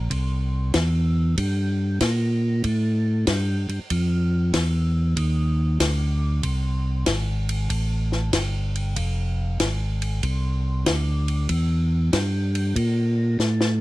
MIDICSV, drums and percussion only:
0, 0, Header, 1, 2, 480
1, 0, Start_track
1, 0, Tempo, 632911
1, 1047, Time_signature, 4, 2, 24, 8
1, 10471, End_track
2, 0, Start_track
2, 0, Title_t, "Drums"
2, 81, Note_on_c, 9, 51, 57
2, 84, Note_on_c, 9, 36, 25
2, 157, Note_off_c, 9, 51, 0
2, 160, Note_off_c, 9, 36, 0
2, 559, Note_on_c, 9, 44, 55
2, 559, Note_on_c, 9, 51, 70
2, 561, Note_on_c, 9, 38, 76
2, 564, Note_on_c, 9, 36, 21
2, 634, Note_off_c, 9, 44, 0
2, 634, Note_off_c, 9, 51, 0
2, 637, Note_off_c, 9, 38, 0
2, 640, Note_off_c, 9, 36, 0
2, 1043, Note_on_c, 9, 51, 65
2, 1046, Note_on_c, 9, 36, 23
2, 1119, Note_off_c, 9, 51, 0
2, 1122, Note_off_c, 9, 36, 0
2, 1521, Note_on_c, 9, 44, 64
2, 1521, Note_on_c, 9, 51, 66
2, 1523, Note_on_c, 9, 38, 72
2, 1525, Note_on_c, 9, 36, 27
2, 1596, Note_off_c, 9, 44, 0
2, 1596, Note_off_c, 9, 51, 0
2, 1599, Note_off_c, 9, 38, 0
2, 1600, Note_off_c, 9, 36, 0
2, 2000, Note_on_c, 9, 51, 60
2, 2004, Note_on_c, 9, 36, 23
2, 2076, Note_off_c, 9, 51, 0
2, 2080, Note_off_c, 9, 36, 0
2, 2479, Note_on_c, 9, 44, 53
2, 2479, Note_on_c, 9, 51, 70
2, 2481, Note_on_c, 9, 38, 71
2, 2483, Note_on_c, 9, 36, 24
2, 2555, Note_off_c, 9, 44, 0
2, 2555, Note_off_c, 9, 51, 0
2, 2557, Note_off_c, 9, 38, 0
2, 2559, Note_off_c, 9, 36, 0
2, 2801, Note_on_c, 9, 51, 43
2, 2877, Note_off_c, 9, 51, 0
2, 2958, Note_on_c, 9, 51, 61
2, 2963, Note_on_c, 9, 36, 21
2, 3034, Note_off_c, 9, 51, 0
2, 3039, Note_off_c, 9, 36, 0
2, 3439, Note_on_c, 9, 44, 64
2, 3439, Note_on_c, 9, 51, 67
2, 3441, Note_on_c, 9, 38, 69
2, 3442, Note_on_c, 9, 36, 24
2, 3515, Note_off_c, 9, 44, 0
2, 3515, Note_off_c, 9, 51, 0
2, 3517, Note_off_c, 9, 38, 0
2, 3518, Note_off_c, 9, 36, 0
2, 3918, Note_on_c, 9, 51, 67
2, 3921, Note_on_c, 9, 36, 20
2, 3994, Note_off_c, 9, 51, 0
2, 3997, Note_off_c, 9, 36, 0
2, 4399, Note_on_c, 9, 44, 68
2, 4399, Note_on_c, 9, 51, 77
2, 4401, Note_on_c, 9, 36, 23
2, 4402, Note_on_c, 9, 38, 72
2, 4475, Note_off_c, 9, 44, 0
2, 4475, Note_off_c, 9, 51, 0
2, 4477, Note_off_c, 9, 36, 0
2, 4477, Note_off_c, 9, 38, 0
2, 4878, Note_on_c, 9, 51, 68
2, 4882, Note_on_c, 9, 36, 27
2, 4954, Note_off_c, 9, 51, 0
2, 4958, Note_off_c, 9, 36, 0
2, 5355, Note_on_c, 9, 44, 55
2, 5355, Note_on_c, 9, 51, 74
2, 5357, Note_on_c, 9, 38, 69
2, 5361, Note_on_c, 9, 36, 25
2, 5431, Note_off_c, 9, 44, 0
2, 5431, Note_off_c, 9, 51, 0
2, 5433, Note_off_c, 9, 38, 0
2, 5437, Note_off_c, 9, 36, 0
2, 5679, Note_on_c, 9, 51, 54
2, 5755, Note_off_c, 9, 51, 0
2, 5839, Note_on_c, 9, 51, 63
2, 5841, Note_on_c, 9, 36, 21
2, 5914, Note_off_c, 9, 51, 0
2, 5917, Note_off_c, 9, 36, 0
2, 6160, Note_on_c, 9, 38, 35
2, 6236, Note_off_c, 9, 38, 0
2, 6316, Note_on_c, 9, 44, 63
2, 6316, Note_on_c, 9, 51, 75
2, 6319, Note_on_c, 9, 38, 72
2, 6321, Note_on_c, 9, 36, 25
2, 6392, Note_off_c, 9, 44, 0
2, 6392, Note_off_c, 9, 51, 0
2, 6395, Note_off_c, 9, 38, 0
2, 6397, Note_off_c, 9, 36, 0
2, 6639, Note_on_c, 9, 51, 45
2, 6715, Note_off_c, 9, 51, 0
2, 6797, Note_on_c, 9, 51, 70
2, 6801, Note_on_c, 9, 36, 29
2, 6873, Note_off_c, 9, 51, 0
2, 6877, Note_off_c, 9, 36, 0
2, 7278, Note_on_c, 9, 44, 53
2, 7278, Note_on_c, 9, 51, 67
2, 7280, Note_on_c, 9, 38, 71
2, 7281, Note_on_c, 9, 36, 27
2, 7354, Note_off_c, 9, 44, 0
2, 7354, Note_off_c, 9, 51, 0
2, 7356, Note_off_c, 9, 38, 0
2, 7357, Note_off_c, 9, 36, 0
2, 7597, Note_on_c, 9, 51, 53
2, 7673, Note_off_c, 9, 51, 0
2, 7757, Note_on_c, 9, 51, 61
2, 7761, Note_on_c, 9, 36, 23
2, 7833, Note_off_c, 9, 51, 0
2, 7837, Note_off_c, 9, 36, 0
2, 8237, Note_on_c, 9, 44, 58
2, 8237, Note_on_c, 9, 51, 77
2, 8239, Note_on_c, 9, 38, 76
2, 8241, Note_on_c, 9, 36, 29
2, 8313, Note_off_c, 9, 44, 0
2, 8313, Note_off_c, 9, 51, 0
2, 8315, Note_off_c, 9, 38, 0
2, 8317, Note_off_c, 9, 36, 0
2, 8555, Note_on_c, 9, 51, 47
2, 8631, Note_off_c, 9, 51, 0
2, 8713, Note_on_c, 9, 51, 66
2, 8719, Note_on_c, 9, 36, 23
2, 8789, Note_off_c, 9, 51, 0
2, 8795, Note_off_c, 9, 36, 0
2, 9198, Note_on_c, 9, 44, 56
2, 9198, Note_on_c, 9, 51, 71
2, 9200, Note_on_c, 9, 36, 20
2, 9201, Note_on_c, 9, 38, 75
2, 9274, Note_off_c, 9, 44, 0
2, 9274, Note_off_c, 9, 51, 0
2, 9276, Note_off_c, 9, 36, 0
2, 9277, Note_off_c, 9, 38, 0
2, 9517, Note_on_c, 9, 51, 54
2, 9593, Note_off_c, 9, 51, 0
2, 9678, Note_on_c, 9, 51, 64
2, 9679, Note_on_c, 9, 36, 25
2, 9753, Note_off_c, 9, 51, 0
2, 9755, Note_off_c, 9, 36, 0
2, 10159, Note_on_c, 9, 44, 55
2, 10161, Note_on_c, 9, 38, 55
2, 10235, Note_off_c, 9, 44, 0
2, 10237, Note_off_c, 9, 38, 0
2, 10319, Note_on_c, 9, 38, 59
2, 10395, Note_off_c, 9, 38, 0
2, 10471, End_track
0, 0, End_of_file